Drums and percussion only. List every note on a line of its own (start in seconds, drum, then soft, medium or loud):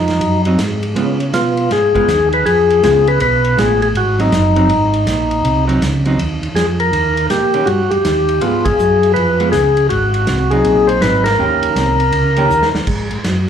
0.08 snare soft
0.08 ride soft
0.21 ride medium
0.45 ride soft
0.59 snare medium
0.59 hi-hat pedal medium
0.59 ride medium
0.83 ride soft
0.96 ride medium
1.20 ride soft
1.33 snare medium
1.33 hi-hat pedal medium
1.33 ride medium
1.57 ride soft
1.71 snare soft
1.71 ride medium
1.95 kick soft
1.95 ride soft
2.09 snare medium
2.09 hi-hat pedal medium
2.09 ride medium
2.33 ride soft
2.46 ride medium
2.70 ride soft
2.83 snare medium
2.83 hi-hat pedal medium
2.83 ride medium
3.07 ride soft
3.20 ride medium
3.44 ride soft
3.58 snare medium
3.58 hi-hat pedal medium
3.58 ride medium
3.82 ride soft
3.95 ride medium
4.19 ride soft
4.32 snare medium
4.32 hi-hat pedal medium
4.32 ride medium
4.56 ride soft
4.69 ride medium
4.94 ride soft
5.07 snare medium
5.07 hi-hat pedal medium
5.07 ride medium
5.31 ride soft
5.45 ride medium
5.69 ride soft
5.82 snare medium
5.82 hi-hat pedal medium
5.82 ride medium
6.05 ride soft
6.19 ride medium
6.43 ride soft
6.56 snare medium
6.56 hi-hat pedal medium
6.56 ride medium
6.80 ride soft
6.93 ride medium
7.17 ride soft
7.30 snare medium
7.30 hi-hat pedal medium
7.30 ride medium
7.54 ride soft
7.67 ride medium
7.91 ride soft
8.05 snare medium
8.05 hi-hat pedal medium
8.05 ride medium
8.29 ride soft
8.41 ride medium
8.65 kick medium
8.65 ride medium
8.79 hi-hat pedal medium
9.03 ride soft
9.16 ride medium
9.40 ride soft
9.53 snare medium
9.53 hi-hat pedal medium
9.53 ride medium
9.77 ride soft
9.90 ride medium
10.14 ride soft
10.27 snare medium
10.27 hi-hat pedal medium
10.27 ride medium
10.51 ride soft
10.64 ride medium
10.89 ride soft
11.02 snare medium
11.02 hi-hat pedal medium
11.02 ride medium
11.26 snare medium
11.26 ride medium
11.63 ride soft
11.76 snare medium
11.76 hi-hat pedal medium
11.76 ride medium
12.00 ride soft
12.12 ride medium
12.36 ride soft
12.50 hi-hat pedal medium
12.62 snare medium
12.75 snare medium
12.87 kick medium
12.87 crash medium
13.11 ride soft
13.24 snare medium
13.24 hi-hat pedal medium
13.24 ride medium